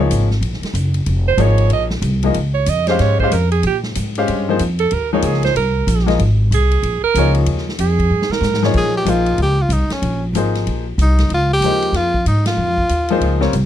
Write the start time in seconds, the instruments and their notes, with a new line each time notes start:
Already playing: upright piano F3
0.00 upright piano A#3 D#4 G#4 C#5
0.10 upright bass G#1, hi-hat pedal, ride
0.31 snare
0.41 upright bass A#1, ride
0.53 snare
0.62 muted upright bass stroke, snare, ride
0.73 upright bass F#1, hi-hat pedal, ride
0.94 ride
1.06 upright bass F1, ride
1.28 alto saxophone C5
1.37 upright bass G#1, upright piano F3 A#3 D#4 G#4 C#5, hi-hat pedal, ride
1.42 alto saxophone C#5
1.58 ride
1.69 upright bass A#1, alto saxophone D#5, ride
1.90 snare
2.02 upright bass C2, hi-hat pedal, ride
2.23 upright piano F3 A#3 D#4 G#4 D#5, ride
2.34 upright bass C#2, ride
2.54 alto saxophone C#5
2.66 upright bass F2, alto saxophone D#5, hi-hat pedal, ride
2.87 upright piano G#3 C#4 G4 C5, alto saxophone C5, snare, ride
2.91 upright piano F5
2.99 upright bass G#2, alto saxophone C#5, snare, ride
3.20 upright piano G#3 C#4 G4 C5, alto saxophone C5, kick
3.24 upright piano F5
3.31 upright bass F2, alto saxophone A#4, hi-hat pedal, ride
3.52 alto saxophone G#4, ride
3.63 upright bass A#2, alto saxophone G4, ride
3.83 snare
3.95 upright bass G#2, hi-hat pedal, ride
4.15 upright piano G#3 C#4 G4 C5 F5, ride
4.28 upright bass G2, ride
4.49 upright piano F3 A#3 D#4 G#4 C5
4.59 upright bass F2, hi-hat pedal, ride
4.79 alto saxophone A4, ride
4.91 upright bass D#2, alto saxophone A#4, ride
5.13 upright piano F3 A#3 D#4 G#4 C#5, alto saxophone D#4
5.22 upright bass C#2, alto saxophone G#4, hi-hat pedal, ride
5.34 snare
5.43 alto saxophone C5, snare, ride
5.55 upright bass C2, alto saxophone A#4, ride
5.87 upright bass A#1, hi-hat pedal, ride
5.99 snare
6.06 upright piano F3 A#3 D#4 G#4 D#5, snare, ride
6.19 upright bass G#1, ride
6.51 upright bass C2, alto saxophone G#4, hi-hat pedal, ride
6.71 ride
6.83 upright bass A#1, ride
7.03 alto saxophone A#4, muted upright bass stroke
7.14 upright bass C#2, upright piano F3 A#3 D#4 G#4, hi-hat pedal, ride
7.19 upright piano C#5
7.35 ride
7.46 upright bass D#2, ride
7.58 snare
7.69 snare
7.79 upright bass F2, alto saxophone G#4, hi-hat pedal, ride
7.99 kick, ride
8.10 upright bass G2
8.22 snare
8.29 alto saxophone A#4, muted upright bass stroke, snare
8.41 upright bass G#2, snare, hi-hat pedal
8.54 snare
8.63 upright piano F3 A#3 D#4 G#4 C#5, snare
8.74 upright bass A#2, tenor saxophone G#4, kick, crash
8.97 tenor saxophone G4
9.05 upright bass A#1, upright piano F3 A#3 D#4 G#4 C5, hi-hat pedal, ride
9.10 tenor saxophone F4
9.26 ride
9.38 upright bass C#2, ride
9.42 tenor saxophone G4
9.61 tenor saxophone F4
9.69 upright bass C2, tenor saxophone D#4, hi-hat pedal, ride
9.90 tenor saxophone C#4, snare, ride
10.02 upright bass A#1, ride
10.33 upright bass G#1, upright piano F3 A#3 D#4 G#4, hi-hat pedal, ride
10.37 upright piano C5
10.55 snare, ride
10.67 upright bass A#1, ride
10.98 upright bass C2, tenor saxophone D#4, hi-hat pedal, ride
11.18 snare, ride
11.29 upright bass C#2, ride
11.34 tenor saxophone F4
11.53 tenor saxophone G4
11.60 upright bass D#2, upright piano F3 A#3, hi-hat pedal, ride
11.65 upright piano G#3 D#4 C5
11.82 ride
11.92 upright bass F2, tenor saxophone F4, snare, ride
12.14 kick
12.26 upright bass G#2, tenor saxophone D#4, hi-hat pedal, ride
12.46 tenor saxophone F4, snare, ride
12.57 upright bass F2
12.78 kick
12.89 upright bass D#2, hi-hat pedal, ride
13.09 upright piano F3 A#3 D#4 G#4 C5, ride
13.21 upright bass C#2, ride
13.40 upright piano G3 C4 F4 A#4 C#5, snare
13.53 upright bass C2, hi-hat pedal, ride